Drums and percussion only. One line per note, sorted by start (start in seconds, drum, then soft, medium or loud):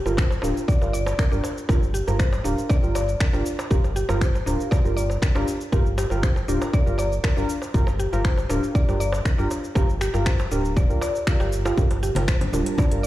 0.06 darbuka ka medium
0.06 cabasa soft
0.17 finger snap loud
0.17 kick loud
0.17 darbuka tek medium
0.17 cabasa medium
0.31 darbuka ka medium
0.31 cabasa soft
0.42 darbuka tek medium
0.42 cabasa medium
0.57 cabasa soft
0.68 kick loud
0.68 cabasa medium
0.82 darbuka tek medium
0.82 cabasa soft
0.94 cabasa loud
1.06 darbuka tek medium
1.06 cabasa soft
1.19 finger snap loud
1.19 kick loud
1.19 cabasa soft
1.32 cabasa soft
1.44 darbuka tek medium
1.44 cabasa medium
1.58 cabasa soft
1.69 kick loud
1.69 darbuka tek medium
1.69 cabasa medium
1.83 cabasa soft
1.95 cabasa medium
2.08 darbuka ka medium
2.08 darbuka tek medium
2.08 cabasa soft
2.20 finger snap loud
2.20 kick loud
2.20 cabasa medium
2.33 darbuka tek medium
2.33 cabasa soft
2.45 cabasa medium
2.58 cabasa soft
2.69 kick loud
2.69 darbuka tek medium
2.69 cabasa medium
2.84 cabasa soft
2.95 darbuka tek medium
2.95 cabasa loud
3.09 cabasa soft
3.20 finger snap loud
3.20 kick loud
3.20 cabasa medium
3.33 darbuka tek medium
3.33 cabasa soft
3.46 cabasa medium
3.59 darbuka tek medium
3.59 cabasa soft
3.71 kick loud
3.71 cabasa medium
3.84 darbuka tek medium
3.84 cabasa soft
3.96 cabasa medium
4.09 darbuka ka medium
4.09 darbuka tek medium
4.09 cabasa soft
4.21 finger snap medium
4.21 kick loud
4.21 cabasa soft
4.35 darbuka ka medium
4.35 cabasa soft
4.47 darbuka tek medium
4.47 cabasa medium
4.60 cabasa soft
4.72 kick loud
4.72 darbuka tek medium
4.72 cabasa soft
4.85 cabasa soft
4.98 cabasa medium
5.10 darbuka tek medium
5.10 cabasa soft
5.22 finger snap medium
5.22 kick loud
5.22 cabasa medium
5.36 darbuka tek loud
5.36 cabasa soft
5.48 cabasa medium
5.61 cabasa soft
5.72 kick loud
5.72 darbuka tek medium
5.72 cabasa soft
5.86 cabasa soft
5.98 darbuka tek medium
5.98 cabasa medium
6.10 darbuka ka medium
6.10 cabasa soft
6.23 finger snap medium
6.23 kick loud
6.23 cabasa soft
6.36 darbuka tek medium
6.36 cabasa soft
6.49 cabasa medium
6.62 darbuka tek medium
6.62 cabasa soft
6.74 kick loud
6.74 cabasa medium
6.87 cabasa soft
6.98 darbuka tek medium
6.98 cabasa medium
7.12 cabasa soft
7.24 finger snap loud
7.24 kick loud
7.24 darbuka tek medium
7.24 cabasa soft
7.37 cabasa soft
7.49 cabasa medium
7.62 darbuka tek medium
7.62 cabasa soft
7.74 kick loud
7.74 cabasa soft
7.87 darbuka tek medium
7.87 cabasa soft
8.00 cabasa medium
8.13 darbuka ka medium
8.13 cabasa soft
8.25 finger snap loud
8.25 kick loud
8.25 darbuka tek medium
8.25 cabasa soft
8.38 darbuka ka medium
8.38 cabasa soft
8.50 darbuka tek medium
8.50 cabasa medium
8.63 cabasa soft
8.75 kick loud
8.75 cabasa medium
8.89 darbuka tek medium
8.89 cabasa soft
9.01 cabasa medium
9.13 darbuka tek medium
9.13 cabasa soft
9.25 finger snap loud
9.25 kick loud
9.25 cabasa soft
9.39 cabasa soft
9.51 darbuka tek medium
9.51 cabasa medium
9.64 cabasa soft
9.75 kick loud
9.75 darbuka tek medium
9.75 cabasa medium
9.89 cabasa soft
10.01 finger snap medium
10.01 cabasa medium
10.14 darbuka ka medium
10.14 darbuka tek medium
10.14 cabasa soft
10.26 finger snap loud
10.26 kick medium
10.26 cabasa soft
10.39 darbuka ka medium
10.39 darbuka tek medium
10.39 cabasa soft
10.52 cabasa medium
10.65 cabasa soft
10.77 kick loud
10.77 darbuka tek medium
10.77 cabasa medium
10.90 cabasa soft
11.01 darbuka tek medium
11.01 cabasa medium
11.15 cabasa soft
11.27 finger snap loud
11.27 kick loud
11.27 cabasa soft
11.40 darbuka tek medium
11.40 cabasa soft
11.53 cabasa medium
11.66 darbuka tek medium
11.66 cabasa soft
11.78 kick loud
11.78 cabasa medium
11.91 closed hi-hat soft
11.91 darbuka tek medium
11.91 cabasa soft
12.03 muted conga medium
12.03 cabasa medium
12.15 closed hi-hat medium
12.15 darbuka ka medium
12.15 high conga loud
12.15 darbuka tek medium
12.15 cabasa soft
12.28 finger snap loud
12.28 kick loud
12.28 cabasa soft
12.41 closed hi-hat soft
12.41 darbuka ka medium
12.41 high conga medium
12.41 low conga loud
12.41 cabasa soft
12.52 muted conga soft
12.52 darbuka tek medium
12.52 high conga medium
12.52 cabasa medium
12.66 closed hi-hat medium
12.66 cabasa soft
12.78 kick loud
12.78 high conga loud
12.78 darbuka tek medium
12.78 cabasa medium
12.91 closed hi-hat soft
12.91 muted conga medium
12.91 cabasa soft